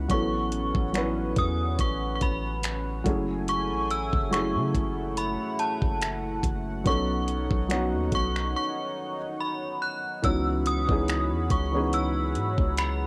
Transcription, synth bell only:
0.11 1.33 C#6 medium
1.38 1.81 D#6 loud
1.81 2.14 C#6 loud
2.15 2.22 C#6 medium
2.22 3.02 B5 medium
3.49 3.92 C#6 loud
3.91 4.34 E6 loud
4.33 5.20 C#6 medium
5.18 5.61 B5 medium
5.59 6.40 A5 medium
6.87 8.14 C#6 loud
8.15 8.55 C#6 loud
8.56 9.78 C#6 medium
9.40 9.83 B5 medium
9.82 10.21 F#6 medium
10.24 10.38 E6 medium
10.67 11.54 D#6 medium
11.51 11.95 C#6 medium
11.94 12.80 E6 medium
12.78 13.07 B5 medium

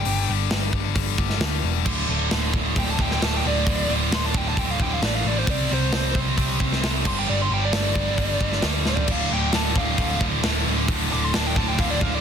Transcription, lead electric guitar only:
0.00 0.29 G5 loud
2.79 2.90 G5 loud
2.90 3.02 A5 medium
3.02 3.11 G5 loud
3.13 3.25 G5 loud
3.25 3.37 A5 medium
3.37 3.46 G5 medium
3.47 3.89 D5 loud
4.15 4.24 C6 loud
4.26 4.37 A5 loud
4.37 4.47 G5 loud
4.48 4.59 A5 loud
4.59 4.71 G5 loud
4.71 4.81 F5 loud
4.83 4.93 G5 loud
4.93 5.05 F5 loud
5.05 5.14 D5 medium
5.15 5.27 F5 loud
5.27 5.38 D5 medium
5.38 5.48 C5 loud
5.50 5.71 D5 loud
5.74 6.16 C5 loud
7.07 7.17 C6 loud
7.19 7.29 G5 loud
7.29 7.40 D5 loud
7.42 7.51 C6 medium
7.53 7.63 G5 loud
7.65 7.74 D5 loud
7.75 8.62 D5 loud
8.89 9.09 D5 medium
9.11 9.32 F5 loud
9.33 9.54 G5 loud
9.55 9.76 A5 medium
9.78 10.21 F5 loud
11.13 11.24 D6 loud
11.24 11.34 C6 loud
11.35 11.47 A5 medium
11.47 11.57 G5 loud
11.58 11.68 A5 loud
11.68 11.80 G5 loud
11.80 11.90 F5 loud
11.90 12.02 D5 loud
12.02 12.14 F5 loud
12.14 12.21 D5 loud

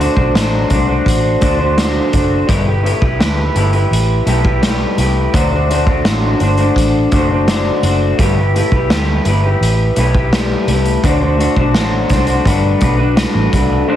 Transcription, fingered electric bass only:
0.16 0.31 B1 medium
0.34 0.63 A1 medium
0.70 0.99 C2 medium
1.06 1.35 A1 medium
1.42 1.99 D2 medium
2.13 2.42 F#1 medium
2.48 2.91 G1 medium
3.02 3.16 B1 medium
3.20 3.48 D2 medium
3.55 3.84 G1 medium
3.91 4.20 A1 medium
4.26 4.84 B1 medium
4.98 5.26 C2 medium
5.34 6.06 D2 medium
6.05 6.33 A1 medium
6.40 6.69 G1 medium
6.76 7.05 A1 medium
7.12 7.69 F#1 medium
7.83 8.11 F#1 medium
8.18 8.61 G1 medium
8.72 8.86 B1 medium
8.90 9.18 D2 medium
9.25 9.54 G1 medium
9.61 9.89 A1 medium
9.97 10.54 B1 medium
10.67 10.96 C2 medium
11.03 11.46 D2 medium
11.56 11.74 B1 medium
11.74 12.03 A1 medium
12.10 12.39 C2 medium
12.45 12.74 G1 loud
12.81 13.24 B1 medium
13.35 13.49 A1 medium
13.53 13.81 C2 medium

